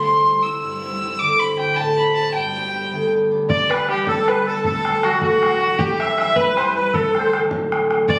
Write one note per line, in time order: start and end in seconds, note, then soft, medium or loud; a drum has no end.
0.00 0.10 D2 medium
0.00 0.10 G3 soft
0.00 3.21 A3 soft
0.00 1.40 D4 soft
0.00 0.44 C6 medium
0.05 0.68 C3 medium
0.26 0.42 G3 soft
0.26 0.43 C4 soft
0.26 0.44 E4 soft
0.43 0.82 G3 soft
0.43 0.83 C4 soft
0.43 0.84 E4 soft
0.43 0.60 E6 medium
0.61 1.25 G2 medium
0.61 1.21 E6 medium
0.83 1.00 G3 soft
0.83 1.01 C4 soft
0.83 1.02 E4 soft
1.01 1.25 G3 medium
1.01 1.40 C4 soft
1.01 3.63 E4 medium
1.19 1.82 D3 medium
1.19 1.41 D6 loud
1.40 1.58 C4 soft
1.40 1.59 D4 soft
1.40 1.59 F#4 medium
1.40 1.58 B5 medium
1.59 1.98 C4 soft
1.59 1.99 D4 soft
1.59 1.99 F#4 medium
1.59 1.75 G5 medium
1.73 2.40 A2 medium
1.73 1.99 A5 medium
1.73 1.78 B5 medium
1.97 2.16 C4 soft
1.97 2.17 D4 soft
1.97 2.17 F#4 medium
1.97 2.16 B5 medium
2.15 2.62 C4 medium
2.15 2.56 D4 soft
2.15 2.42 F#4 medium
2.15 2.33 A5 medium
2.34 2.97 G2 medium
2.34 3.09 G5 medium
2.56 2.73 B3 medium
2.56 2.74 D4 soft
2.56 2.74 G4 soft
2.74 3.11 B3 soft
2.74 3.12 D4 soft
2.74 3.12 G4 medium
2.92 3.54 D2 medium
3.12 3.30 B3 soft
3.12 3.31 D4 soft
3.12 3.31 G4 medium
3.31 3.70 B3 soft
3.31 3.70 D4 soft
3.31 4.90 G4 medium
3.49 4.12 G2 medium
3.49 3.71 D5 medium
3.49 bodhran medium
3.70 3.86 G3 soft
3.70 3.87 B3 soft
3.70 3.88 D4 medium
3.70 3.88 B4 medium
3.70 bodhran medium
3.87 4.26 G3 soft
3.87 4.27 B3 soft
3.87 4.27 D4 medium
3.87 4.06 G4 medium
3.87 4.07 G4 medium
3.87 bodhran medium
4.06 4.62 D2 medium
4.06 4.30 A4 medium
4.06 4.28 A4 medium
4.06 bodhran medium
4.27 4.44 G3 soft
4.27 4.45 B3 soft
4.27 4.46 D4 medium
4.27 4.46 B4 medium
4.27 bodhran medium
4.45 4.69 G3 medium
4.45 5.84 B3 soft
4.45 4.84 D4 medium
4.45 4.63 A4 medium
4.64 5.84 D2 medium
4.64 5.00 A4 medium
4.64 5.05 A4 medium
4.64 bodhran medium
4.84 5.01 F#3 soft
4.84 5.03 A3 soft
4.84 5.03 D4 medium
4.84 bodhran medium
5.02 5.41 F#3 soft
5.02 5.42 A3 soft
5.02 5.43 D4 medium
5.02 5.20 F#4 medium
5.02 5.21 F#4 medium
5.02 bodhran medium
5.21 5.84 A2 medium
5.21 5.60 F#4 medium
5.21 5.80 F#4 medium
5.21 bodhran medium
5.42 5.56 F#3 soft
5.42 5.59 A3 soft
5.42 5.62 D4 soft
5.42 bodhran medium
5.57 5.84 F#3 medium
5.61 7.15 D4 medium
5.61 5.78 F#4 medium
5.78 6.98 C2 medium
5.78 6.01 G4 medium
5.78 5.99 G4 medium
5.78 bodhran medium
5.98 6.14 G3 soft
5.98 6.16 C4 soft
5.98 6.19 E4 soft
5.98 6.17 E5 medium
5.98 6.18 E5 loud
5.98 bodhran medium
6.14 6.54 G3 soft
6.14 6.56 C4 soft
6.14 6.37 E5 medium
6.18 6.56 E4 medium
6.18 6.37 E5 loud
6.18 bodhran medium
6.35 6.98 G2 medium
6.35 6.59 B4 loud
6.35 6.74 B4 loud
6.35 bodhran medium
6.56 6.72 G3 soft
6.56 6.74 C4 soft
6.56 6.74 E4 medium
6.56 6.75 C5 medium
6.56 bodhran medium
6.73 6.98 G3 medium
6.73 8.19 C4 soft
6.73 8.19 E4 medium
6.73 6.92 B4 medium
6.73 6.96 B4 medium
6.93 8.13 D2 medium
6.93 7.20 A4 medium
6.93 7.38 A4 medium
6.93 bodhran medium
7.14 7.31 F#3 soft
7.14 7.32 A3 soft
7.14 7.32 D4 medium
7.14 bodhran medium
7.19 7.36 C5 medium
7.32 7.70 F#3 medium
7.32 7.71 A3 soft
7.32 7.72 D4 soft
7.32 bodhran medium
7.51 8.13 A2 medium
7.51 bodhran medium
7.71 7.89 F#3 soft
7.71 7.90 A3 soft
7.71 7.91 D4 medium
7.71 bodhran medium
7.90 8.13 F#3 soft
7.90 8.19 A3 soft
7.90 8.19 D4 medium
7.90 bodhran medium
8.08 8.19 G2 medium
8.08 8.19 D5 medium
8.08 8.19 D5 loud
8.08 bodhran medium